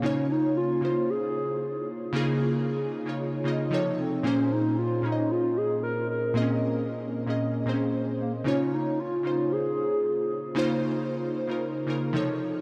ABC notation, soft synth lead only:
X:1
M:4/4
L:1/8
Q:1/4=114
K:Db
V:1 name="Soft synth lead"
D E F F A3 z | z6 z C | D E F E F A B B | z6 z B, |
D E F F A3 z | z8 |]